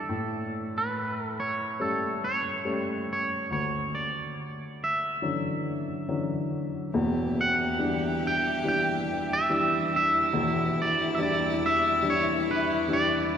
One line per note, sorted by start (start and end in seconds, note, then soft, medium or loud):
0.00 0.10 E3 soft
0.00 0.11 G3 soft
0.00 0.11 D4 soft
0.00 0.77 A4 medium
0.09 3.46 A2 medium
0.78 1.26 B4 medium
1.26 1.41 A4 medium
1.40 1.82 C#5 medium
1.80 2.62 G3 soft
1.80 2.62 A3 soft
1.80 2.62 C#4 soft
1.80 2.24 A4 medium
2.24 3.11 C#5 medium
2.65 3.47 G3 soft
2.65 3.47 A3 soft
2.65 3.48 C#4 soft
3.13 3.51 C#5 medium
3.51 6.89 D2 medium
3.51 3.94 C#5 medium
3.95 4.82 D5 medium
4.84 6.49 E5 medium
5.22 6.05 D3 soft
5.22 6.05 E3 soft
5.22 6.05 F#3 soft
5.22 6.06 C#4 soft
6.08 6.91 D3 soft
6.08 6.91 E3 soft
6.08 6.91 F#3 soft
6.08 6.91 C#4 soft
6.94 10.31 E1 medium
6.94 10.31 E2 medium
6.94 13.38 E2 medium
6.94 13.38 E3 medium
6.94 13.38 D4 medium
6.94 9.52 G4 loud
6.94 13.38 G4 medium
6.94 10.32 E5 medium
7.41 8.26 F#5 loud
7.78 8.61 E3 soft
7.78 8.61 G3 soft
7.78 8.62 D4 medium
8.27 8.67 G5 loud
8.64 9.47 E3 medium
8.64 9.47 G3 soft
8.64 9.47 D4 medium
8.68 9.32 G5 loud
9.33 9.90 E5 medium
9.49 10.32 E3 soft
9.49 10.32 G3 soft
9.49 10.32 D4 medium
9.49 13.38 E4 medium
9.96 10.75 E5 loud
10.33 13.38 E1 medium
10.33 13.38 E2 medium
10.33 13.38 E5 medium
10.82 11.14 D5 medium
11.15 12.00 E3 soft
11.15 12.01 G3 soft
11.15 11.20 E5 medium
11.19 12.01 D4 medium
11.19 11.64 D5 medium
11.66 12.07 E5 loud
12.02 12.85 E3 medium
12.02 12.85 G3 medium
12.02 12.85 D4 medium
12.10 12.50 C#5 medium
12.51 12.92 B4 medium
12.87 13.38 E3 soft
12.87 13.38 G3 soft
12.87 13.38 D4 medium
12.93 13.38 D5 medium